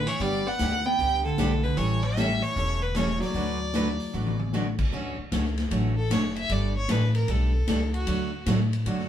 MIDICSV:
0, 0, Header, 1, 7, 480
1, 0, Start_track
1, 0, Key_signature, 2, "major"
1, 0, Tempo, 393185
1, 254, Time_signature, 4, 2, 24, 8
1, 11093, End_track
2, 0, Start_track
2, 0, Title_t, "Fiddle"
2, 0, Program_c, 0, 110
2, 99, Note_on_c, 0, 73, 94
2, 264, Note_on_c, 0, 74, 99
2, 282, Note_off_c, 0, 73, 0
2, 578, Note_on_c, 0, 78, 107
2, 597, Note_off_c, 0, 74, 0
2, 1045, Note_on_c, 0, 79, 105
2, 1064, Note_off_c, 0, 78, 0
2, 1515, Note_off_c, 0, 79, 0
2, 1522, Note_on_c, 0, 69, 101
2, 1994, Note_on_c, 0, 71, 88
2, 2012, Note_off_c, 0, 69, 0
2, 2164, Note_on_c, 0, 73, 92
2, 2183, Note_off_c, 0, 71, 0
2, 2479, Note_on_c, 0, 76, 93
2, 2497, Note_off_c, 0, 73, 0
2, 2961, Note_on_c, 0, 73, 95
2, 2979, Note_off_c, 0, 76, 0
2, 3442, Note_on_c, 0, 71, 86
2, 3461, Note_off_c, 0, 73, 0
2, 3618, Note_on_c, 0, 73, 88
2, 3636, Note_off_c, 0, 71, 0
2, 3922, Note_off_c, 0, 73, 0
2, 3929, Note_on_c, 0, 74, 92
2, 5485, Note_off_c, 0, 74, 0
2, 7289, Note_on_c, 0, 69, 87
2, 7480, Note_on_c, 0, 73, 74
2, 7499, Note_off_c, 0, 69, 0
2, 7766, Note_off_c, 0, 73, 0
2, 7773, Note_on_c, 0, 76, 100
2, 7958, Note_on_c, 0, 74, 84
2, 7976, Note_off_c, 0, 76, 0
2, 8251, Note_off_c, 0, 74, 0
2, 8258, Note_on_c, 0, 73, 86
2, 8437, Note_on_c, 0, 71, 80
2, 8456, Note_off_c, 0, 73, 0
2, 8729, Note_off_c, 0, 71, 0
2, 8736, Note_on_c, 0, 70, 83
2, 8930, Note_on_c, 0, 69, 77
2, 8948, Note_off_c, 0, 70, 0
2, 9694, Note_off_c, 0, 69, 0
2, 9702, Note_on_c, 0, 66, 85
2, 10296, Note_off_c, 0, 66, 0
2, 11093, End_track
3, 0, Start_track
3, 0, Title_t, "Steel-string acoustic guitar"
3, 0, Program_c, 1, 25
3, 240, Note_on_c, 1, 50, 63
3, 243, Note_on_c, 1, 55, 61
3, 248, Note_on_c, 1, 59, 66
3, 250, Note_on_c, 1, 62, 58
3, 252, Note_on_c, 1, 67, 62
3, 522, Note_off_c, 1, 50, 0
3, 523, Note_off_c, 1, 55, 0
3, 526, Note_off_c, 1, 59, 0
3, 527, Note_off_c, 1, 62, 0
3, 528, Note_off_c, 1, 67, 0
3, 726, Note_on_c, 1, 50, 69
3, 733, Note_on_c, 1, 55, 74
3, 737, Note_on_c, 1, 59, 72
3, 739, Note_on_c, 1, 67, 83
3, 740, Note_on_c, 1, 62, 71
3, 876, Note_off_c, 1, 50, 0
3, 879, Note_off_c, 1, 55, 0
3, 881, Note_off_c, 1, 59, 0
3, 882, Note_off_c, 1, 62, 0
3, 882, Note_off_c, 1, 67, 0
3, 1212, Note_on_c, 1, 50, 50
3, 1219, Note_on_c, 1, 55, 60
3, 1221, Note_on_c, 1, 67, 59
3, 1222, Note_on_c, 1, 62, 61
3, 1224, Note_on_c, 1, 59, 63
3, 1488, Note_off_c, 1, 50, 0
3, 1491, Note_off_c, 1, 55, 0
3, 1492, Note_off_c, 1, 67, 0
3, 1493, Note_off_c, 1, 62, 0
3, 1494, Note_off_c, 1, 59, 0
3, 1685, Note_on_c, 1, 50, 79
3, 1694, Note_on_c, 1, 55, 74
3, 1696, Note_on_c, 1, 59, 84
3, 1699, Note_on_c, 1, 62, 82
3, 1699, Note_on_c, 1, 67, 89
3, 1835, Note_off_c, 1, 50, 0
3, 1840, Note_off_c, 1, 55, 0
3, 1840, Note_off_c, 1, 59, 0
3, 1842, Note_off_c, 1, 62, 0
3, 1842, Note_off_c, 1, 67, 0
3, 2166, Note_on_c, 1, 52, 57
3, 2172, Note_on_c, 1, 55, 62
3, 2175, Note_on_c, 1, 61, 60
3, 2179, Note_on_c, 1, 64, 62
3, 2182, Note_on_c, 1, 69, 69
3, 2445, Note_off_c, 1, 52, 0
3, 2448, Note_off_c, 1, 55, 0
3, 2450, Note_off_c, 1, 61, 0
3, 2451, Note_off_c, 1, 64, 0
3, 2453, Note_off_c, 1, 69, 0
3, 2649, Note_on_c, 1, 52, 72
3, 2653, Note_on_c, 1, 55, 80
3, 2655, Note_on_c, 1, 61, 78
3, 2657, Note_on_c, 1, 64, 76
3, 2664, Note_on_c, 1, 69, 83
3, 2797, Note_off_c, 1, 52, 0
3, 2799, Note_off_c, 1, 55, 0
3, 2800, Note_off_c, 1, 61, 0
3, 2801, Note_off_c, 1, 64, 0
3, 2805, Note_off_c, 1, 69, 0
3, 3129, Note_on_c, 1, 52, 51
3, 3135, Note_on_c, 1, 61, 56
3, 3136, Note_on_c, 1, 55, 55
3, 3138, Note_on_c, 1, 64, 54
3, 3146, Note_on_c, 1, 69, 58
3, 3406, Note_off_c, 1, 52, 0
3, 3410, Note_off_c, 1, 55, 0
3, 3410, Note_off_c, 1, 61, 0
3, 3411, Note_off_c, 1, 64, 0
3, 3415, Note_off_c, 1, 69, 0
3, 3609, Note_on_c, 1, 52, 74
3, 3614, Note_on_c, 1, 55, 84
3, 3622, Note_on_c, 1, 61, 75
3, 3622, Note_on_c, 1, 64, 84
3, 3625, Note_on_c, 1, 69, 78
3, 3757, Note_off_c, 1, 52, 0
3, 3760, Note_off_c, 1, 55, 0
3, 3764, Note_off_c, 1, 61, 0
3, 3764, Note_off_c, 1, 64, 0
3, 3765, Note_off_c, 1, 69, 0
3, 4087, Note_on_c, 1, 50, 59
3, 4092, Note_on_c, 1, 54, 58
3, 4094, Note_on_c, 1, 62, 61
3, 4094, Note_on_c, 1, 66, 69
3, 4096, Note_on_c, 1, 57, 59
3, 4103, Note_on_c, 1, 71, 60
3, 4366, Note_off_c, 1, 50, 0
3, 4368, Note_off_c, 1, 54, 0
3, 4369, Note_off_c, 1, 62, 0
3, 4369, Note_off_c, 1, 66, 0
3, 4370, Note_off_c, 1, 57, 0
3, 4374, Note_off_c, 1, 71, 0
3, 4565, Note_on_c, 1, 50, 76
3, 4573, Note_on_c, 1, 54, 69
3, 4580, Note_on_c, 1, 57, 68
3, 4581, Note_on_c, 1, 62, 75
3, 4583, Note_on_c, 1, 66, 80
3, 4583, Note_on_c, 1, 71, 88
3, 4716, Note_off_c, 1, 50, 0
3, 4720, Note_off_c, 1, 54, 0
3, 4723, Note_off_c, 1, 57, 0
3, 4724, Note_off_c, 1, 62, 0
3, 4724, Note_off_c, 1, 71, 0
3, 4725, Note_off_c, 1, 66, 0
3, 5047, Note_on_c, 1, 50, 60
3, 5053, Note_on_c, 1, 54, 54
3, 5055, Note_on_c, 1, 57, 56
3, 5057, Note_on_c, 1, 66, 60
3, 5059, Note_on_c, 1, 62, 53
3, 5063, Note_on_c, 1, 71, 64
3, 5326, Note_off_c, 1, 50, 0
3, 5329, Note_off_c, 1, 54, 0
3, 5330, Note_off_c, 1, 57, 0
3, 5331, Note_off_c, 1, 66, 0
3, 5332, Note_off_c, 1, 62, 0
3, 5334, Note_off_c, 1, 71, 0
3, 5536, Note_on_c, 1, 50, 72
3, 5543, Note_on_c, 1, 57, 76
3, 5544, Note_on_c, 1, 54, 71
3, 5546, Note_on_c, 1, 66, 81
3, 5549, Note_on_c, 1, 62, 83
3, 5554, Note_on_c, 1, 71, 77
3, 5681, Note_off_c, 1, 50, 0
3, 5685, Note_off_c, 1, 54, 0
3, 5685, Note_off_c, 1, 57, 0
3, 5686, Note_off_c, 1, 66, 0
3, 5688, Note_off_c, 1, 62, 0
3, 5690, Note_off_c, 1, 71, 0
3, 6012, Note_on_c, 1, 50, 52
3, 6012, Note_on_c, 1, 54, 56
3, 6018, Note_on_c, 1, 57, 58
3, 6023, Note_on_c, 1, 61, 60
3, 6027, Note_on_c, 1, 66, 69
3, 6288, Note_off_c, 1, 50, 0
3, 6288, Note_off_c, 1, 54, 0
3, 6291, Note_off_c, 1, 57, 0
3, 6294, Note_off_c, 1, 61, 0
3, 6296, Note_off_c, 1, 66, 0
3, 6496, Note_on_c, 1, 50, 70
3, 6499, Note_on_c, 1, 54, 75
3, 6501, Note_on_c, 1, 57, 73
3, 6501, Note_on_c, 1, 61, 75
3, 6502, Note_on_c, 1, 66, 76
3, 6641, Note_off_c, 1, 50, 0
3, 6643, Note_off_c, 1, 54, 0
3, 6643, Note_off_c, 1, 57, 0
3, 6644, Note_off_c, 1, 61, 0
3, 6644, Note_off_c, 1, 66, 0
3, 6966, Note_on_c, 1, 50, 58
3, 6972, Note_on_c, 1, 54, 58
3, 6973, Note_on_c, 1, 57, 60
3, 6980, Note_on_c, 1, 66, 64
3, 6981, Note_on_c, 1, 61, 63
3, 7245, Note_off_c, 1, 50, 0
3, 7249, Note_off_c, 1, 54, 0
3, 7249, Note_off_c, 1, 57, 0
3, 7252, Note_off_c, 1, 66, 0
3, 7253, Note_off_c, 1, 61, 0
3, 7452, Note_on_c, 1, 50, 82
3, 7455, Note_on_c, 1, 54, 81
3, 7456, Note_on_c, 1, 57, 77
3, 7462, Note_on_c, 1, 61, 79
3, 7463, Note_on_c, 1, 66, 83
3, 7599, Note_off_c, 1, 50, 0
3, 7601, Note_off_c, 1, 54, 0
3, 7601, Note_off_c, 1, 57, 0
3, 7604, Note_off_c, 1, 61, 0
3, 7605, Note_off_c, 1, 66, 0
3, 7938, Note_on_c, 1, 55, 60
3, 7939, Note_on_c, 1, 57, 55
3, 7945, Note_on_c, 1, 62, 65
3, 7949, Note_on_c, 1, 69, 64
3, 8211, Note_off_c, 1, 55, 0
3, 8212, Note_off_c, 1, 57, 0
3, 8215, Note_off_c, 1, 62, 0
3, 8217, Note_off_c, 1, 69, 0
3, 8412, Note_on_c, 1, 55, 68
3, 8419, Note_on_c, 1, 57, 80
3, 8424, Note_on_c, 1, 62, 78
3, 8425, Note_on_c, 1, 69, 84
3, 8559, Note_off_c, 1, 55, 0
3, 8562, Note_off_c, 1, 57, 0
3, 8565, Note_off_c, 1, 62, 0
3, 8566, Note_off_c, 1, 69, 0
3, 8896, Note_on_c, 1, 55, 56
3, 8906, Note_on_c, 1, 57, 63
3, 8907, Note_on_c, 1, 62, 57
3, 8909, Note_on_c, 1, 69, 66
3, 9171, Note_off_c, 1, 55, 0
3, 9176, Note_off_c, 1, 57, 0
3, 9176, Note_off_c, 1, 62, 0
3, 9177, Note_off_c, 1, 69, 0
3, 9372, Note_on_c, 1, 55, 69
3, 9374, Note_on_c, 1, 57, 78
3, 9381, Note_on_c, 1, 62, 83
3, 9387, Note_on_c, 1, 69, 85
3, 9519, Note_off_c, 1, 55, 0
3, 9520, Note_off_c, 1, 57, 0
3, 9524, Note_off_c, 1, 62, 0
3, 9527, Note_off_c, 1, 69, 0
3, 9853, Note_on_c, 1, 50, 58
3, 9858, Note_on_c, 1, 54, 66
3, 9864, Note_on_c, 1, 62, 62
3, 9864, Note_on_c, 1, 66, 63
3, 9865, Note_on_c, 1, 57, 67
3, 10129, Note_off_c, 1, 50, 0
3, 10132, Note_off_c, 1, 54, 0
3, 10135, Note_off_c, 1, 57, 0
3, 10135, Note_off_c, 1, 62, 0
3, 10135, Note_off_c, 1, 66, 0
3, 10342, Note_on_c, 1, 50, 77
3, 10347, Note_on_c, 1, 54, 78
3, 10349, Note_on_c, 1, 57, 83
3, 10353, Note_on_c, 1, 62, 76
3, 10356, Note_on_c, 1, 66, 89
3, 10485, Note_off_c, 1, 50, 0
3, 10487, Note_off_c, 1, 54, 0
3, 10488, Note_off_c, 1, 57, 0
3, 10490, Note_off_c, 1, 62, 0
3, 10492, Note_off_c, 1, 66, 0
3, 10816, Note_on_c, 1, 50, 58
3, 10823, Note_on_c, 1, 54, 56
3, 10829, Note_on_c, 1, 57, 57
3, 10829, Note_on_c, 1, 62, 64
3, 10832, Note_on_c, 1, 66, 60
3, 11091, Note_off_c, 1, 50, 0
3, 11093, Note_off_c, 1, 54, 0
3, 11093, Note_off_c, 1, 57, 0
3, 11093, Note_off_c, 1, 62, 0
3, 11093, Note_off_c, 1, 66, 0
3, 11093, End_track
4, 0, Start_track
4, 0, Title_t, "Hollow-body jazz guitar"
4, 0, Program_c, 2, 26
4, 81, Note_on_c, 2, 52, 77
4, 256, Note_off_c, 2, 52, 0
4, 256, Note_on_c, 2, 55, 85
4, 568, Note_off_c, 2, 55, 0
4, 568, Note_on_c, 2, 59, 88
4, 1032, Note_off_c, 2, 59, 0
4, 1046, Note_on_c, 2, 59, 85
4, 1529, Note_off_c, 2, 59, 0
4, 1529, Note_on_c, 2, 50, 72
4, 1976, Note_off_c, 2, 50, 0
4, 2006, Note_on_c, 2, 50, 67
4, 2160, Note_off_c, 2, 50, 0
4, 2160, Note_on_c, 2, 52, 85
4, 2474, Note_off_c, 2, 52, 0
4, 2474, Note_on_c, 2, 55, 92
4, 2958, Note_off_c, 2, 55, 0
4, 2958, Note_on_c, 2, 52, 77
4, 3433, Note_off_c, 2, 52, 0
4, 3433, Note_on_c, 2, 50, 70
4, 3595, Note_off_c, 2, 50, 0
4, 3595, Note_on_c, 2, 52, 75
4, 3908, Note_on_c, 2, 54, 69
4, 3922, Note_off_c, 2, 52, 0
4, 5475, Note_off_c, 2, 54, 0
4, 11093, End_track
5, 0, Start_track
5, 0, Title_t, "Upright bass"
5, 0, Program_c, 3, 32
5, 246, Note_on_c, 3, 31, 92
5, 633, Note_off_c, 3, 31, 0
5, 728, Note_on_c, 3, 38, 88
5, 1139, Note_off_c, 3, 38, 0
5, 1204, Note_on_c, 3, 37, 79
5, 1616, Note_off_c, 3, 37, 0
5, 1691, Note_on_c, 3, 35, 73
5, 2100, Note_off_c, 3, 35, 0
5, 2168, Note_on_c, 3, 33, 92
5, 2939, Note_off_c, 3, 33, 0
5, 3126, Note_on_c, 3, 28, 84
5, 3898, Note_off_c, 3, 28, 0
5, 4083, Note_on_c, 3, 38, 90
5, 4856, Note_off_c, 3, 38, 0
5, 5049, Note_on_c, 3, 33, 77
5, 5820, Note_off_c, 3, 33, 0
5, 6005, Note_on_c, 3, 38, 79
5, 6304, Note_off_c, 3, 38, 0
5, 6492, Note_on_c, 3, 37, 91
5, 6959, Note_off_c, 3, 37, 0
5, 6971, Note_on_c, 3, 33, 86
5, 7439, Note_off_c, 3, 33, 0
5, 7451, Note_on_c, 3, 30, 88
5, 7919, Note_off_c, 3, 30, 0
5, 7927, Note_on_c, 3, 31, 78
5, 8397, Note_off_c, 3, 31, 0
5, 8406, Note_on_c, 3, 33, 98
5, 8876, Note_off_c, 3, 33, 0
5, 8884, Note_on_c, 3, 35, 87
5, 9355, Note_off_c, 3, 35, 0
5, 9369, Note_on_c, 3, 37, 86
5, 9838, Note_off_c, 3, 37, 0
5, 9853, Note_on_c, 3, 38, 83
5, 10320, Note_off_c, 3, 38, 0
5, 10331, Note_on_c, 3, 45, 99
5, 10799, Note_off_c, 3, 45, 0
5, 10813, Note_on_c, 3, 42, 83
5, 11093, Note_off_c, 3, 42, 0
5, 11093, End_track
6, 0, Start_track
6, 0, Title_t, "Muted upright bass strokes"
6, 6331, Note_on_c, 9, 29, 39
6, 6453, Note_off_c, 9, 29, 0
6, 11093, End_track
7, 0, Start_track
7, 0, Title_t, "Drums"
7, 82, Note_on_c, 9, 46, 39
7, 204, Note_off_c, 9, 46, 0
7, 244, Note_on_c, 9, 46, 50
7, 246, Note_on_c, 9, 36, 35
7, 366, Note_off_c, 9, 46, 0
7, 368, Note_off_c, 9, 36, 0
7, 720, Note_on_c, 9, 38, 71
7, 720, Note_on_c, 9, 42, 60
7, 842, Note_off_c, 9, 38, 0
7, 842, Note_off_c, 9, 42, 0
7, 1206, Note_on_c, 9, 46, 48
7, 1207, Note_on_c, 9, 36, 34
7, 1328, Note_off_c, 9, 46, 0
7, 1329, Note_off_c, 9, 36, 0
7, 1683, Note_on_c, 9, 38, 74
7, 1683, Note_on_c, 9, 42, 59
7, 1805, Note_off_c, 9, 38, 0
7, 1805, Note_off_c, 9, 42, 0
7, 2002, Note_on_c, 9, 46, 39
7, 2124, Note_off_c, 9, 46, 0
7, 2166, Note_on_c, 9, 46, 52
7, 2168, Note_on_c, 9, 36, 35
7, 2288, Note_off_c, 9, 46, 0
7, 2290, Note_off_c, 9, 36, 0
7, 2651, Note_on_c, 9, 38, 75
7, 2651, Note_on_c, 9, 42, 56
7, 2773, Note_off_c, 9, 38, 0
7, 2773, Note_off_c, 9, 42, 0
7, 2972, Note_on_c, 9, 46, 44
7, 3094, Note_off_c, 9, 46, 0
7, 3128, Note_on_c, 9, 36, 35
7, 3130, Note_on_c, 9, 46, 47
7, 3250, Note_off_c, 9, 36, 0
7, 3253, Note_off_c, 9, 46, 0
7, 3609, Note_on_c, 9, 38, 73
7, 3609, Note_on_c, 9, 42, 55
7, 3731, Note_off_c, 9, 38, 0
7, 3731, Note_off_c, 9, 42, 0
7, 3772, Note_on_c, 9, 38, 30
7, 3894, Note_off_c, 9, 38, 0
7, 3924, Note_on_c, 9, 38, 43
7, 3926, Note_on_c, 9, 46, 42
7, 4046, Note_off_c, 9, 38, 0
7, 4048, Note_off_c, 9, 46, 0
7, 4077, Note_on_c, 9, 46, 46
7, 4084, Note_on_c, 9, 36, 35
7, 4199, Note_off_c, 9, 46, 0
7, 4206, Note_off_c, 9, 36, 0
7, 4559, Note_on_c, 9, 38, 72
7, 4559, Note_on_c, 9, 42, 60
7, 4681, Note_off_c, 9, 38, 0
7, 4681, Note_off_c, 9, 42, 0
7, 4880, Note_on_c, 9, 46, 43
7, 5002, Note_off_c, 9, 46, 0
7, 5044, Note_on_c, 9, 48, 45
7, 5166, Note_off_c, 9, 48, 0
7, 5206, Note_on_c, 9, 48, 63
7, 5328, Note_off_c, 9, 48, 0
7, 5363, Note_on_c, 9, 48, 75
7, 5485, Note_off_c, 9, 48, 0
7, 5526, Note_on_c, 9, 38, 55
7, 5648, Note_off_c, 9, 38, 0
7, 5842, Note_on_c, 9, 49, 73
7, 5846, Note_on_c, 9, 36, 70
7, 5964, Note_off_c, 9, 49, 0
7, 5968, Note_off_c, 9, 36, 0
7, 6009, Note_on_c, 9, 36, 21
7, 6131, Note_off_c, 9, 36, 0
7, 6492, Note_on_c, 9, 36, 20
7, 6493, Note_on_c, 9, 38, 73
7, 6493, Note_on_c, 9, 44, 59
7, 6493, Note_on_c, 9, 51, 61
7, 6614, Note_off_c, 9, 36, 0
7, 6615, Note_off_c, 9, 38, 0
7, 6615, Note_off_c, 9, 44, 0
7, 6615, Note_off_c, 9, 51, 0
7, 6649, Note_on_c, 9, 38, 30
7, 6771, Note_off_c, 9, 38, 0
7, 6806, Note_on_c, 9, 51, 51
7, 6816, Note_on_c, 9, 38, 47
7, 6928, Note_off_c, 9, 51, 0
7, 6938, Note_off_c, 9, 38, 0
7, 6972, Note_on_c, 9, 36, 24
7, 6972, Note_on_c, 9, 51, 63
7, 7094, Note_off_c, 9, 36, 0
7, 7095, Note_off_c, 9, 51, 0
7, 7453, Note_on_c, 9, 36, 26
7, 7457, Note_on_c, 9, 38, 79
7, 7457, Note_on_c, 9, 44, 58
7, 7457, Note_on_c, 9, 51, 77
7, 7575, Note_off_c, 9, 36, 0
7, 7579, Note_off_c, 9, 38, 0
7, 7579, Note_off_c, 9, 44, 0
7, 7579, Note_off_c, 9, 51, 0
7, 7767, Note_on_c, 9, 51, 49
7, 7890, Note_off_c, 9, 51, 0
7, 7928, Note_on_c, 9, 51, 60
7, 7929, Note_on_c, 9, 36, 24
7, 8050, Note_off_c, 9, 51, 0
7, 8051, Note_off_c, 9, 36, 0
7, 8407, Note_on_c, 9, 38, 73
7, 8407, Note_on_c, 9, 44, 59
7, 8407, Note_on_c, 9, 51, 75
7, 8409, Note_on_c, 9, 36, 22
7, 8529, Note_off_c, 9, 38, 0
7, 8529, Note_off_c, 9, 44, 0
7, 8529, Note_off_c, 9, 51, 0
7, 8531, Note_off_c, 9, 36, 0
7, 8724, Note_on_c, 9, 51, 53
7, 8846, Note_off_c, 9, 51, 0
7, 8887, Note_on_c, 9, 36, 19
7, 8887, Note_on_c, 9, 51, 58
7, 9009, Note_off_c, 9, 36, 0
7, 9009, Note_off_c, 9, 51, 0
7, 9370, Note_on_c, 9, 38, 78
7, 9370, Note_on_c, 9, 44, 56
7, 9370, Note_on_c, 9, 51, 68
7, 9371, Note_on_c, 9, 36, 21
7, 9492, Note_off_c, 9, 38, 0
7, 9492, Note_off_c, 9, 44, 0
7, 9492, Note_off_c, 9, 51, 0
7, 9494, Note_off_c, 9, 36, 0
7, 9692, Note_on_c, 9, 51, 44
7, 9814, Note_off_c, 9, 51, 0
7, 9849, Note_on_c, 9, 51, 74
7, 9853, Note_on_c, 9, 36, 29
7, 9971, Note_off_c, 9, 51, 0
7, 9975, Note_off_c, 9, 36, 0
7, 10332, Note_on_c, 9, 38, 76
7, 10332, Note_on_c, 9, 44, 53
7, 10332, Note_on_c, 9, 51, 76
7, 10334, Note_on_c, 9, 36, 20
7, 10454, Note_off_c, 9, 38, 0
7, 10454, Note_off_c, 9, 44, 0
7, 10454, Note_off_c, 9, 51, 0
7, 10456, Note_off_c, 9, 36, 0
7, 10657, Note_on_c, 9, 51, 51
7, 10779, Note_off_c, 9, 51, 0
7, 10815, Note_on_c, 9, 51, 65
7, 10816, Note_on_c, 9, 36, 22
7, 10938, Note_off_c, 9, 36, 0
7, 10938, Note_off_c, 9, 51, 0
7, 10978, Note_on_c, 9, 38, 29
7, 11093, Note_off_c, 9, 38, 0
7, 11093, End_track
0, 0, End_of_file